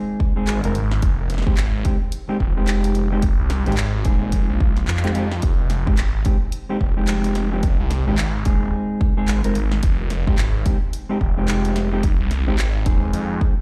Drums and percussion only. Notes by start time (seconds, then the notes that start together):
0.20 kick
0.47 clap, closed hi-hat
0.64 closed hi-hat
0.75 closed hi-hat
0.91 snare
1.02 kick, closed hi-hat
1.30 snare, closed hi-hat
1.34 snare
1.38 snare
1.42 snare
1.47 kick
1.57 clap, closed hi-hat
1.85 kick, closed hi-hat
2.12 closed hi-hat
2.40 kick
2.68 clap, closed hi-hat
2.84 closed hi-hat
2.95 closed hi-hat
3.22 kick, closed hi-hat
3.50 snare, closed hi-hat
3.66 closed hi-hat
3.72 closed hi-hat
3.77 clap, closed hi-hat
3.86 closed hi-hat
4.05 kick, closed hi-hat
4.32 kick, closed hi-hat
4.60 kick
4.77 snare, closed hi-hat
4.88 clap
4.97 clap
5.04 clap, closed hi-hat
5.15 closed hi-hat
5.32 snare
5.42 kick, closed hi-hat
5.70 snare, closed hi-hat
5.87 kick
5.97 clap, closed hi-hat
6.25 kick, closed hi-hat
6.52 closed hi-hat
6.81 kick
7.08 clap, closed hi-hat
7.24 closed hi-hat
7.35 snare, closed hi-hat
7.63 kick, closed hi-hat
7.91 snare, closed hi-hat
8.18 clap, closed hi-hat
8.45 kick, closed hi-hat
9.01 kick
9.28 clap, closed hi-hat
9.44 closed hi-hat
9.55 closed hi-hat
9.72 snare
9.83 kick, closed hi-hat
10.10 snare, closed hi-hat
10.27 kick
10.38 clap, closed hi-hat
10.66 kick, closed hi-hat
10.93 closed hi-hat
11.21 kick
11.48 clap, closed hi-hat
11.65 closed hi-hat
11.76 snare, closed hi-hat
12.03 kick, closed hi-hat
12.31 snare, closed hi-hat
12.59 clap, closed hi-hat
12.86 kick, closed hi-hat
13.13 closed hi-hat
13.41 kick